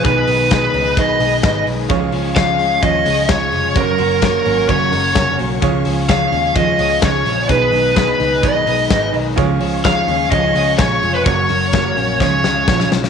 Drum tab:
RD |x---x---x---x---|x---x---x---x---|x---x---x---x---|x---x---x---x---|
HH |p-o-p-o-p-o-p-o-|p-o-p-o-p-o-p-o-|p-o-p-o-p-o-p-o-|p-o-p-o-p-o-p-o-|
SD |----o-------o---|----o-------o---|----o-------o---|----o-------o---|
BD |o---o---o---o---|o---o---o---o---|o---o---o---o---|o---o---o---o---|

RD |x---x---x---x---|x---x---x---x---|x---x-----------|
HH |p-o-p-o-p-o-p-o-|p-o-p-o-p-o-p-o-|p-o-p-o---------|
SD |----o-------o---|----o-------o---|----o---o-o-oooo|
BD |o---o---o---o---|o---o---o---o---|o---o---o---o---|